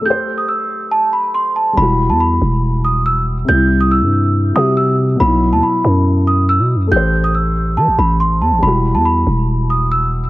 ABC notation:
X:1
M:4/4
L:1/16
Q:1/4=140
K:Em
V:1 name="Celesta"
g'3 ^d' e'4 a2 b2 c'2 a2 | b3 a b4 z2 ^d'2 e'2 z2 | g'3 ^d' e'4 z2 d'2 e'2 z2 | b3 a b4 z2 ^d'2 e'2 z2 |
g'3 ^d' e'4 a2 b2 c'2 a2 | b3 a b4 z2 ^d'2 e'2 z2 |]
V:2 name="Grand piano"
[A,Gc]16 | [G,EF]16 | [C,G,E]8- [C,G,E]2 [C,G,F]6 | [B,,F,E]16 |
[A,Gc]16 | [G,EF]16 |]
V:3 name="808-style bass" clef=bass
z16 | E,,,3 E,,3 E,,,8- E,,,2 | C,,4- C,, G,,4- G,, C,6 | B,,,3 ^D,, z2 F,,6- F,, B,,3/2 F,,3/2 |
A,,,8 E, A,,, A,,,4 E,, A,,, | E,,,3 E,,3 E,,,8- E,,,2 |]